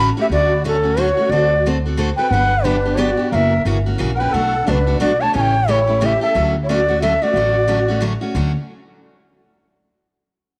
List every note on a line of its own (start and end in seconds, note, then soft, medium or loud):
0.17 0.31 A3 soft
0.17 0.31 C#4 medium
0.17 0.30 F#4 medium
0.17 0.26 G4 medium
0.21 0.27 E5 loud
0.30 1.10 D2 medium
0.30 0.51 D3 medium
0.30 0.52 F#3 medium
0.30 0.52 A3 medium
0.30 0.52 C#4 medium
0.30 0.52 F#4 medium
0.30 0.63 F#4 medium
0.30 0.63 D5 loud
0.64 0.75 D3 medium
0.64 0.75 F#3 medium
0.64 0.75 A3 medium
0.64 0.76 C#4 medium
0.64 0.97 C#4 medium
0.64 0.76 F#4 medium
0.64 1.02 A4 medium
0.83 0.96 A3 soft
0.83 0.96 C#4 medium
0.83 0.97 F#4 medium
0.97 1.08 D3 medium
0.97 1.08 F#3 medium
0.97 1.08 A3 medium
0.97 1.08 C#4 medium
0.97 1.09 F#4 loud
0.97 1.30 F#4 medium
1.01 1.32 C#5 medium
1.17 1.31 A3 soft
1.17 1.31 C#4 soft
1.17 1.31 F#4 medium
1.29 2.11 D2 medium
1.29 1.52 D3 medium
1.29 1.52 A3 medium
1.29 1.52 C4 medium
1.29 1.65 F#4 medium
1.29 1.52 F#4 medium
1.29 1.52 A4 medium
1.29 1.64 D5 medium
1.66 1.76 D3 medium
1.66 1.76 A3 medium
1.66 1.77 C4 medium
1.66 1.76 F#4 medium
1.66 1.77 A4 loud
1.86 1.97 C4 soft
1.86 1.98 F#4 medium
1.86 1.98 A4 soft
1.97 2.09 D3 loud
1.97 2.09 A3 medium
1.97 2.09 C4 medium
1.97 2.09 F#4 medium
1.97 2.09 A4 medium
2.16 2.32 C4 soft
2.16 2.32 F#4 medium
2.16 2.31 A4 medium
2.16 2.29 B4 medium
2.16 2.32 G5 medium
2.30 3.12 G1 medium
2.30 2.52 D3 medium
2.30 2.53 F#3 medium
2.30 2.53 B3 medium
2.30 2.53 D4 medium
2.30 2.53 G4 medium
2.30 2.65 B4 medium
2.30 2.66 F#5 loud
2.63 2.75 D3 medium
2.63 2.76 F#3 medium
2.63 2.76 B3 medium
2.63 2.98 D4 medium
2.63 2.76 D4 loud
2.63 2.76 G4 medium
2.63 3.01 B4 medium
2.85 2.97 B3 soft
2.85 2.97 D4 soft
2.85 2.97 G4 medium
2.95 3.09 D3 medium
2.95 3.09 F#3 medium
2.95 3.09 B3 medium
2.95 3.09 D4 loud
2.95 3.31 F#4 medium
2.95 3.09 G4 loud
3.00 3.31 D5 medium
3.17 3.32 B3 soft
3.17 3.32 D4 soft
3.17 3.31 G4 medium
3.31 3.59 F#1 medium
3.31 3.52 C#3 medium
3.31 3.53 E3 medium
3.31 3.53 A#3 medium
3.31 3.53 C#4 medium
3.31 3.53 F#4 medium
3.31 3.63 A#4 medium
3.31 3.36 F5 medium
3.35 3.63 E5 medium
3.65 3.94 G1 medium
3.65 3.76 C#3 medium
3.65 3.77 E3 medium
3.65 3.77 A#3 medium
3.65 3.77 C#4 medium
3.65 3.77 F#4 loud
3.86 3.98 A#3 soft
3.86 3.98 C#4 soft
3.86 3.99 F#4 medium
3.98 4.28 A#1 medium
3.98 4.09 C#3 medium
3.98 4.10 E3 medium
3.98 4.10 A#3 medium
3.98 4.10 C#4 medium
3.98 4.10 F#4 medium
4.14 4.19 A#4 medium
4.14 4.22 F#5 medium
4.19 4.33 A#3 soft
4.19 4.33 C#4 soft
4.19 4.33 F#4 medium
4.19 4.33 B4 medium
4.19 4.35 G5 medium
4.31 4.60 B1 medium
4.31 4.53 B2 medium
4.31 4.54 F#3 medium
4.31 4.54 A3 medium
4.31 4.54 D4 medium
4.31 4.54 F#4 medium
4.31 4.65 A4 medium
4.31 4.71 F#5 medium
4.64 4.96 C#2 medium
4.64 4.77 B2 medium
4.64 4.77 F#3 medium
4.64 4.77 A3 medium
4.64 4.99 D4 medium
4.64 4.78 D4 medium
4.64 4.78 F#4 medium
4.70 5.00 B4 medium
4.87 4.99 A3 soft
4.87 5.00 D4 soft
4.87 5.00 F#4 medium
5.00 5.29 B1 medium
5.00 5.10 B2 loud
5.00 5.11 F#3 medium
5.00 5.11 A3 medium
5.00 5.11 D4 loud
5.00 5.18 F#4 medium
5.00 5.11 F#4 loud
5.00 5.23 D5 medium
5.20 5.33 A3 soft
5.20 5.33 D4 soft
5.20 5.33 F#4 soft
5.20 5.31 C#5 medium
5.20 5.34 A5 medium
5.33 6.15 A1 medium
5.33 5.53 C#3 medium
5.33 5.54 E3 medium
5.33 5.54 A3 medium
5.33 5.54 C#4 medium
5.33 5.54 G4 medium
5.33 5.64 C#5 medium
5.33 5.42 G#5 loud
5.41 5.72 G5 loud
5.67 5.78 C#3 medium
5.67 5.78 E3 medium
5.67 5.78 A3 medium
5.67 5.79 C#4 medium
5.67 6.01 E4 medium
5.67 5.78 G4 medium
5.67 6.07 C#5 medium
5.87 6.01 A3 soft
5.87 6.01 C#4 soft
5.87 6.00 G4 medium
6.01 6.11 C#3 medium
6.01 6.11 E3 medium
6.01 6.12 A3 medium
6.01 6.12 C#4 loud
6.01 6.21 G4 medium
6.01 6.12 G4 loud
6.05 6.22 E5 medium
6.21 6.34 A3 soft
6.21 6.34 C#4 soft
6.21 6.34 G4 medium
6.21 6.52 A4 medium
6.21 6.53 E5 medium
6.35 7.15 D2 medium
6.35 6.54 D3 medium
6.35 6.55 F#3 medium
6.35 6.55 A3 medium
6.35 6.55 C#4 medium
6.35 6.55 F#4 medium
6.62 6.67 E4 medium
6.62 6.71 C#5 medium
6.68 6.79 D3 medium
6.68 6.79 F#3 medium
6.68 6.79 A3 medium
6.68 6.79 C#4 loud
6.68 7.01 F#4 medium
6.68 6.80 F#4 loud
6.68 7.01 D5 medium
6.88 7.01 A3 medium
6.88 7.01 C#4 medium
6.88 7.01 F#4 medium
7.02 7.12 D3 medium
7.02 7.13 F#3 loud
7.02 7.12 A3 loud
7.02 7.13 C#4 medium
7.02 7.13 F#4 loud
7.02 7.20 A4 medium
7.02 7.24 E5 medium
7.22 7.35 A3 soft
7.22 7.35 C#4 soft
7.22 7.34 F#4 medium
7.22 8.02 F#4 medium
7.22 8.02 D5 medium
7.34 8.14 A1 medium
7.34 7.55 D3 medium
7.34 7.56 F#3 medium
7.34 7.56 A3 medium
7.34 7.56 C#4 medium
7.34 7.56 F#4 medium
7.68 7.78 D3 medium
7.68 7.79 F#3 medium
7.68 7.79 A3 medium
7.68 7.79 C#4 medium
7.68 7.79 F#4 medium
7.88 8.00 A3 soft
7.88 8.01 C#4 medium
7.88 8.01 F#4 medium
8.01 8.12 D3 medium
8.01 8.12 F#3 medium
8.01 8.12 A3 loud
8.01 8.12 C#4 medium
8.01 8.12 F#4 loud
8.21 8.35 A3 soft
8.21 8.35 C#4 soft
8.21 8.34 F#4 medium
8.35 8.53 D2 medium
8.35 8.51 D3 medium
8.35 8.51 F#3 medium
8.35 8.51 A3 medium
8.35 8.52 C#4 medium
8.35 8.52 F#4 medium